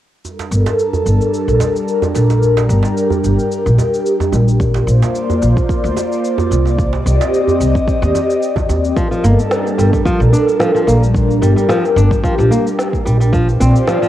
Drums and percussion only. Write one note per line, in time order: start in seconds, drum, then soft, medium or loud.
0.25 djembe tone soft
0.25 cabasa soft
0.39 djembe slap medium
0.39 cabasa soft
0.52 cabasa medium
0.66 djembe slap medium
0.66 cabasa soft
0.79 cabasa soft
0.93 djembe bass medium
0.93 cabasa soft
1.06 cabasa medium
1.21 cabasa soft
1.34 cabasa soft
1.49 cabasa soft
1.60 djembe slap medium
1.60 djembe tone medium
1.60 cabasa medium
1.76 cabasa soft
1.88 cabasa soft
2.02 djembe tone medium
2.02 djembe bass medium
2.02 cabasa soft
2.16 djembe slap soft
2.16 cabasa medium
2.30 djembe slap soft
2.30 cabasa soft
2.42 djembe tone soft
2.42 cabasa soft
2.57 djembe slap medium
2.57 cabasa soft
2.70 cabasa medium
2.83 djembe slap medium
2.83 cabasa soft
2.98 cabasa soft
3.10 djembe bass medium
3.10 cabasa soft
3.24 cabasa medium
3.39 cabasa soft
3.52 cabasa soft
3.67 cabasa soft
3.78 djembe tone medium
3.78 cabasa medium
3.94 cabasa soft
4.06 cabasa soft
4.20 djembe tone medium
4.20 djembe bass medium
4.20 cabasa soft
4.33 djembe tone medium
4.33 cabasa medium
4.48 cabasa soft
4.60 kick loud
4.60 djembe tone soft
4.60 cabasa soft
4.75 djembe slap medium
4.75 cabasa soft
4.88 cabasa medium
5.03 djembe slap medium
5.03 cabasa soft
5.15 cabasa soft
5.30 djembe bass medium
5.30 cabasa soft
5.42 cabasa medium
5.57 kick loud
5.57 cabasa soft
5.69 kick loud
5.69 cabasa soft
5.85 cabasa soft
5.96 djembe slap medium
5.96 djembe tone medium
5.96 cabasa medium
6.12 cabasa soft
6.25 cabasa soft
6.38 djembe tone medium
6.38 djembe bass medium
6.38 cabasa soft
6.52 djembe slap soft
6.52 cabasa medium
6.65 djembe slap soft
6.65 cabasa soft
6.78 kick loud
6.78 djembe tone soft
6.78 cabasa soft
6.93 djembe slap medium
6.93 cabasa soft
7.07 cabasa medium
7.21 djembe slap medium
7.21 cabasa soft
7.34 cabasa soft
7.47 djembe bass medium
7.47 cabasa soft
7.61 cabasa medium
7.75 kick loud
7.75 cabasa soft
7.88 kick loud
7.88 cabasa soft
8.03 cabasa soft
8.15 djembe tone medium
8.15 cabasa medium
8.30 cabasa soft
8.43 cabasa soft
8.56 kick medium
8.56 djembe tone medium
8.56 djembe bass medium
8.56 cabasa soft
8.69 djembe tone medium
8.69 cabasa medium
8.85 cabasa soft
8.97 kick loud
8.97 cabasa soft
9.12 cabasa soft
9.24 cabasa medium
9.39 cabasa soft
9.51 snare medium
9.51 cabasa soft
9.67 cabasa soft
9.79 cabasa medium
9.93 kick loud
9.93 cabasa soft
10.06 kick medium
10.06 cabasa soft
10.22 cabasa soft
10.34 cabasa medium
10.49 cabasa soft
10.60 snare medium
10.60 cabasa soft
10.76 cabasa soft
10.89 cabasa medium
11.04 cabasa soft
11.15 kick loud
11.15 cabasa soft
11.31 cabasa soft
11.43 cabasa medium
11.58 cabasa soft
11.70 snare loud
11.70 cabasa soft
11.85 cabasa soft
11.98 cabasa medium
12.11 kick loud
12.11 cabasa soft
12.24 kick loud
12.24 cabasa soft
12.40 cabasa soft
12.52 cabasa medium
12.67 cabasa soft
12.79 snare medium
12.79 cabasa soft
12.93 kick medium
12.93 cabasa soft
13.07 cabasa medium
13.21 cabasa soft
13.33 kick loud
13.33 cabasa soft
13.49 cabasa soft
13.61 cabasa medium
13.76 cabasa soft
13.87 snare medium
13.87 cabasa soft
14.03 cabasa soft